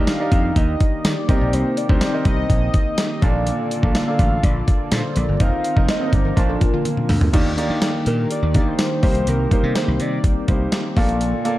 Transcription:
Already playing: D#3 A#3 D4 D#4 G4 A#4 D#5
0.07 F5, snare, closed hi-hat, tambourine
0.20 D#4 G4 A#4 D5 D#5
0.32 F2, kick, closed hi-hat
0.56 D#2 D#5, kick, closed hi-hat
0.80 kick, closed hi-hat
1.05 D#3 D5, snare, closed hi-hat, tambourine
1.28 C2 C3 D#3 C4 D#4 G4 A#4 D#5, kick, closed hi-hat
1.41 A#1
1.53 C2 C5, closed hi-hat
1.77 D5, closed hi-hat
1.89 D2 C4 D#4 G4 A#4 C5, kick
2.01 snare, closed hi-hat, tambourine
2.13 C4 D#4 G4 A#4 D#5
2.25 C2 D#5, kick, closed hi-hat
2.50 A#1, kick, closed hi-hat
2.74 kick, closed hi-hat
2.98 snare, closed hi-hat, tambourine
3.22 A#1 A#2 D3 A#3 D4 F4 A4 D5, kick, closed hi-hat
3.47 closed hi-hat
3.71 closed hi-hat
3.82 A#1 A#3 D4 F4 A4 D5, kick
3.95 F5, snare, closed hi-hat, tambourine
4.07 A#3 D4 F4 A4 D5
4.19 A1, kick, closed hi-hat
4.43 A#1 D5, kick, closed hi-hat
4.68 kick, closed hi-hat
4.92 A#2 C5, snare, closed hi-hat, tambourine
5.16 A#1 D5, closed hi-hat
5.28 G1
5.40 F1 D#3 C4 D#4 F4 A#4 D#5 F5, kick, closed hi-hat
5.64 closed hi-hat
5.76 F1 C4 D#4 F4 A#4 D#5, kick
5.89 D#5, snare, closed hi-hat, tambourine
6.00 C4 D#4 F4 A4 D#5
6.07 A#4
6.13 G1 D5, kick, closed hi-hat
6.25 F3 D#4 A#4
6.36 A#1 A#2 D3 F3 A#3 D4 F4 C5 D5 A5, kick, closed hi-hat
6.49 F3 D4 A4
6.61 A#4, kick, closed hi-hat
6.73 D3 A#3 F4
6.85 closed hi-hat, high tom
6.97 mid tom
7.09 D2, mid tom, open hi-hat
7.21 floor tom
7.33 D#2 D#3 A#3 D4 D#4 G4 D5, kick, closed hi-hat, crash
7.57 A#3 D#4 G4 D5, closed hi-hat
7.70 D#3
7.82 snare, closed hi-hat, tambourine
8.06 A#2 A#4, closed hi-hat
8.31 D5, closed hi-hat
8.43 D#2
8.54 D#3 A#3 D#4 G4 D5, kick, closed hi-hat
8.68 C5
8.79 snare, closed hi-hat, tambourine
9.03 C2 C3 G3 A#3 C4 D#4 G4 A#4 C5, kick, open hi-hat
9.15 closed hi-hat
9.27 C2 A#4, closed hi-hat
9.51 A#3 D#4 G4 A#4 C5, kick, closed hi-hat
9.63 C3
9.76 C5, snare, closed hi-hat, tambourine
9.88 C2
10.00 C3 D5, closed hi-hat
10.24 kick, closed hi-hat
10.48 C2 A#3 D#4 G4 C5, kick, closed hi-hat
10.72 snare, closed hi-hat, tambourine
10.97 A#1 A#2 D3 A#3 F4 A4 D5, kick, open hi-hat
11.09 closed hi-hat
11.21 closed hi-hat
11.45 A#3 F4 A4 D5, closed hi-hat

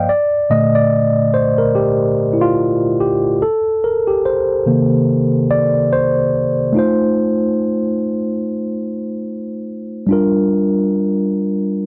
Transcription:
0.09 D5
0.50 A#2 D3 A3 D#5
0.75 D5
1.34 C5
1.58 A#4
1.75 G4
2.33 E4
2.41 F4
3.00 G4
3.42 A4
3.84 A#4
4.08 G4
4.26 C5
4.66 C3 D#3 A#3
5.51 D5
5.93 C5
6.73 A3 D#4 F4
6.79 C5
10.07 G3 D4
10.11 F4 A#4

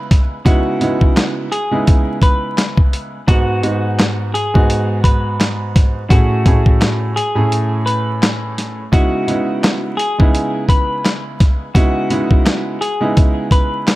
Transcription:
Already playing: C#3 G#3 B3 D#4 E4 B4
0.11 kick, snare, closed hi-hat
0.45 C#3 G#3 B3 D#4 E4 F#4, kick, closed hi-hat
0.81 C#3 G#3 B3 D#4 E4, closed hi-hat
1.01 kick
1.17 snare, clap, closed hi-hat
1.52 G#4, closed hi-hat
1.71 C#3 G#3 B3 D#4 E4
1.87 kick, closed hi-hat
2.22 B4, kick, closed hi-hat
2.58 snare, clap, closed hi-hat
2.77 kick
2.93 closed hi-hat
3.27 G#2 G#3 B3 D#4 F#4, kick, closed hi-hat
3.62 G#2 G#3 B3 D#4 F#4, closed hi-hat
3.99 snare, clap, closed hi-hat
4.34 G#4, closed hi-hat
4.54 G#2 G#3 B3 D#4 F#4, kick
4.70 closed hi-hat
5.04 B4, kick, closed hi-hat
5.41 snare, clap, closed hi-hat
5.76 kick, snare, closed hi-hat
6.10 A2 A3 C#4 E4 F#4 G#4, kick, closed hi-hat
6.46 A2 A3 C#4 E4 G#4, kick, closed hi-hat
6.66 kick
6.82 snare, clap, closed hi-hat
7.16 G#4, closed hi-hat
7.35 A2 A3 C#4 E4 G#4
7.52 closed hi-hat
7.86 B4, closed hi-hat
8.23 snare, clap, closed hi-hat
8.58 snare, closed hi-hat
8.92 C#3 G#3 B3 D#4 E4 F#4, kick, closed hi-hat
9.27 C#3 G#3 B3 D#4 E4, closed hi-hat
9.64 snare, clap, closed hi-hat
9.97 G#4, closed hi-hat
10.18 C#3 G#3 B3 D#4 E4, kick
10.35 closed hi-hat
10.69 B4, kick, closed hi-hat
11.05 snare, clap, closed hi-hat
11.40 kick, snare, closed hi-hat
11.74 C#3 G#3 B3 D#4 E4 F#4, kick, closed hi-hat
12.10 C#3 G#3 B3 D#4 E4, closed hi-hat
12.31 kick
12.46 snare, clap, closed hi-hat
12.81 G#4, closed hi-hat
13.00 C#3 G#3 B3 D#4 E4
13.17 kick, closed hi-hat
13.51 B4, kick, closed hi-hat
13.88 snare, clap, closed hi-hat

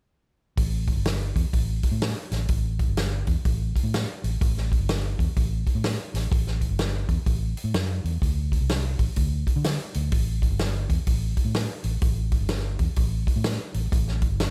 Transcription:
0.57 A1, kick, open hi-hat
0.87 kick, open hi-hat
0.95 G1
1.05 snare, open hi-hat
1.36 E2, kick, open hi-hat
1.53 A1, kick, open hi-hat
1.83 kick, open hi-hat
1.92 A2
2.02 snare, open hi-hat
2.31 A1, snare, open hi-hat
2.48 A1, kick, open hi-hat
2.79 kick, open hi-hat
2.88 G1
2.97 snare, open hi-hat
3.27 E2, kick, open hi-hat
3.45 A1, kick, open hi-hat
3.76 kick, open hi-hat
3.84 A2
3.94 snare, open hi-hat
4.24 A1, open hi-hat
4.41 A1, kick, open hi-hat
4.58 snare
4.72 kick, open hi-hat
4.79 G1
4.89 snare, open hi-hat
5.19 E2, kick, open hi-hat
5.37 A1, kick, open hi-hat
5.67 kick, open hi-hat
5.75 A2
5.84 snare, open hi-hat
6.14 A1, snare, open hi-hat
6.31 A1, kick, open hi-hat
6.47 snare
6.61 kick, open hi-hat
6.69 G1
6.79 snare, open hi-hat
7.09 E2, kick, open hi-hat
7.26 A1, kick, open hi-hat
7.57 open hi-hat
7.64 A2
7.74 F#2, snare, open hi-hat
8.04 E2, open hi-hat
8.22 D2, kick, open hi-hat
8.52 kick, open hi-hat
8.61 C2
8.69 snare, open hi-hat
8.99 A1, kick, open hi-hat
9.16 D2, kick, open hi-hat
9.47 kick, open hi-hat
9.56 D3
9.64 snare, open hi-hat
9.94 D2, open hi-hat
10.12 A1, kick, open hi-hat
10.42 kick, open hi-hat
10.50 G1
10.59 snare, open hi-hat
10.89 E2, kick, open hi-hat
11.07 A1, kick, open hi-hat
11.37 kick, open hi-hat
11.45 A2
11.54 snare, open hi-hat
11.84 A1, open hi-hat
12.01 A1, kick, open hi-hat
12.32 kick, open hi-hat
12.41 G1
12.49 snare, open hi-hat
12.79 E2, kick, open hi-hat
12.96 A1, kick, open hi-hat
13.27 kick, open hi-hat
13.36 A2
13.44 snare, open hi-hat
13.74 A1, open hi-hat
13.92 A1, kick, open hi-hat
14.08 snare
14.22 kick, open hi-hat
14.30 G1
14.40 snare, open hi-hat

